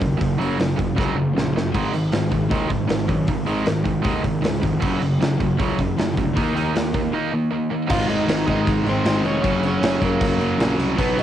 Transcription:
0.00 D#2 F#2 C#3, kick, open hi-hat
0.19 F#1 F#2 C#3, kick, open hi-hat
0.38 F#1 F#2 C#3 F#3, open hi-hat
0.58 F#1 F#2 C#3, snare, open hi-hat
0.78 F#2 C#3, kick, open hi-hat
0.95 C#2 F#2 C#3 F#3, kick
0.99 snare
1.14 F#1 F#2 C#3
1.33 A#1 F#2 C#3
1.38 snare
1.53 F#1 F#2 C#3
1.57 snare
1.72 G#1 G#2 D#3 G#3, kick, crash
1.91 G#1 G#2 D#3, open hi-hat
2.12 G#1 G#2 D#3, snare, open hi-hat
2.30 G#1 G#2 D#3, kick, open hi-hat
2.49 D#2 G#2 D#3 G#3, kick, open hi-hat
2.68 G#1 G#2 D#3, kick, open hi-hat
2.88 G#1 G#2 D#3, snare, open hi-hat
3.07 F#2 G#2 D#3, kick, open hi-hat
3.26 G#1 G#2 D#3, kick, open hi-hat
3.45 G#1 G#2 D#3 G#3, open hi-hat
3.64 G#1 G#2 D#3, snare, open hi-hat
3.84 G#2 D#3, kick, open hi-hat
4.02 D#2 G#2 D#3 G#3, kick, open hi-hat
4.22 G#1 G#2 D#3, kick, open hi-hat
4.41 C#2 G#2 D#3, open hi-hat
4.45 snare
4.60 F1 G#2 D#3, kick, open hi-hat
4.79 F#1 F#2 C#3 F#3, kick, crash
4.99 F#1 F#2 C#3, open hi-hat
5.19 F#1 F#2 C#3, snare, open hi-hat
5.37 F#1 F#2 C#3, kick, open hi-hat
5.57 C#2 F#2 C#3 F#3, kick, open hi-hat
5.76 F#1 F#2 C#3, kick, open hi-hat
5.97 F#1 F#2 C#3, snare, open hi-hat
6.14 D2 F#2 C#3, kick, open hi-hat
6.18 F#2
6.33 D#2 D#3 A#3 D#4, kick, open hi-hat
6.54 D#2 D#3 A#3 D#4, open hi-hat
6.73 D#2 D#3 A#3, snare, open hi-hat
6.93 D#3 A#3, kick, open hi-hat
7.12 D#3 A#3 D#4
7.32 D#3 A#3
7.52 D#3 A#3
7.71 D#3 A#3
7.87 G#1 G#2 F4 F5, kick, crash
7.92 G#2 D#3 G#3
8.08 G#1 D#4 D#5, crash
8.27 G#1, snare, crash
8.46 G#1 G#2 D#3 G#3 D#4 D#5, kick, crash
8.67 G#1, kick, crash
8.84 G#1 G#2 D#3 G#3, crash
8.89 C4 C5
9.04 G#1 G#2 D#3 G#3, snare, crash
9.23 F1 C#4 C#5, crash
9.42 F#1 F#2 C#3 F#3, kick, crash
9.61 F#1 C#4, crash
9.67 C#5
9.81 F#1, snare, crash
10.00 F#1 F#2 C#3 F#3 A#3, kick, crash
10.05 A#4
10.21 F#1, kick, crash
10.37 F#2 C#3 F#3, crash
10.57 A#1 F#2 C#3 F#3, crash
10.61 snare
10.77 C2, crash
10.95 B1 B2 F#3 B3, kick, crash
11.00 B4
11.16 B1 D#4 D#5, crash

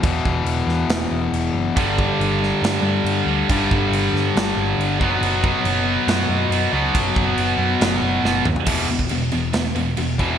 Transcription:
0.02 E1 E2 B2 E3, kick, crash
0.25 E1, kick
0.45 E1, crash
0.67 E2, snare
0.88 E1, snare, crash
1.11 E1
1.33 E1, crash
1.53 F#1
1.76 G1 G2 D3 G3, kick, crash
1.98 kick
2.19 G1, crash
2.43 snare
2.62 G2, snare, crash
2.83 G2
3.05 G2, crash
3.26 D2 D3 G3
3.30 G2
3.49 G1 G2 D3 G3, kick, crash
3.71 G1, kick
3.91 G1, crash
4.13 G2, snare
4.35 G1, snare, crash
4.56 G1
4.77 G1, crash
5.01 F#1 B2 F#3 B3, kick
5.21 F#1, crash
5.44 kick
5.64 F#1, crash
6.07 F#2, snare, crash
6.29 F#2
6.49 F#2 B2 F#3, crash
6.54 B3
6.72 C#2 B2 F#3 B3
6.94 F#1, kick, crash
7.16 F#1, kick
7.37 F#1, crash
7.58 F#2
7.81 F#1, snare, crash
8.02 F#1
8.23 F#1 B2 F#3 B3, snare
8.45 D#2, mid tom
8.56 floor tom
8.66 E1 E2 B2 E3, kick, crash
8.88 E1 E2 B2, crash
8.99 kick
9.09 E1 E2 B2, crash
9.31 E1 E2 B2, crash
9.53 E1 E2 B2, snare, crash
9.65 snare
9.75 E1 E2 B2, crash
9.97 E1 E2 B2, crash
10.19 E1 E2 B2 E3, kick, crash

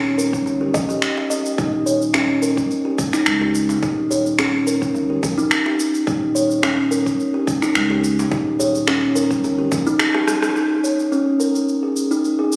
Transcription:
Already playing: D#1
0.18 A#4, djembe tone, shaker
0.33 kick, shaker
0.46 G1, djembe tone, shaker
0.61 G4
0.74 A#1 D#5, kick, djembe tone, djembe bass, shaker
0.89 D#1 G4, shaker
1.02 finger snap, shaker
1.17 djembe slap
1.30 D#5, shaker
1.46 shaker
1.58 D#1 D#4, kick, shaker
1.86 C#5, shaker
2.02 shaker
2.14 C#4, finger snap, djembe slap, djembe bass, shaker
2.42 A#4, djembe tone, shaker
2.57 kick, shaker
2.71 shaker
2.85 G4
2.98 kick, shaker
3.13 D#4, finger snap, shaker
3.26 C#2, finger snap, shaker
3.41 G4
3.55 shaker
3.69 djembe slap, shaker
3.83 D#1 D#4, kick, shaker
4.11 C#5, djembe bass, shaker
4.26 shaker
4.39 C#4, finger snap, djembe slap, djembe bass, shaker
4.67 A#4, djembe tone, shaker
4.82 kick, shaker
4.94 G1, djembe tone, shaker
5.10 G4
5.23 A#1, kick, djembe tone, djembe bass, shaker
5.38 D#1 D#4, shaker
5.51 finger snap, shaker
5.66 G4, djembe slap
5.80 shaker
5.95 shaker
6.07 D#1 D#4, kick, shaker
6.35 C#5, shaker
6.51 shaker
6.63 C#4, finger snap, djembe slap, djembe bass, shaker
6.91 A#4, djembe tone, shaker
7.06 kick, shaker
7.20 shaker
7.34 G4
7.47 kick, shaker
7.62 D#4, finger snap, shaker
7.75 C#2, finger snap, shaker
7.90 G4
8.04 shaker
8.19 djembe slap, shaker
8.31 D#1 D#4, kick, shaker
8.60 C#5, djembe bass, shaker
8.75 shaker
8.87 C#4, finger snap, djembe slap, djembe bass, shaker
9.15 A#4, djembe tone, shaker
9.31 kick, shaker
9.44 G1, djembe tone, shaker
9.58 G4
9.71 A#1, kick, djembe tone, djembe bass, shaker
9.87 D#1 D#4, shaker
9.99 finger snap, cross-stick, shaker
10.14 G4, cross-stick, djembe slap
10.28 cross-stick, shaker
10.42 cross-stick, shaker
10.56 D#4, shaker
10.84 C#5, shaker
10.99 shaker
11.12 C#4, shaker
11.40 A#4, shaker
11.55 shaker
11.69 shaker
11.83 G#4
11.96 shaker
12.11 D#4, shaker
12.24 shaker
12.39 G#4
12.52 shaker

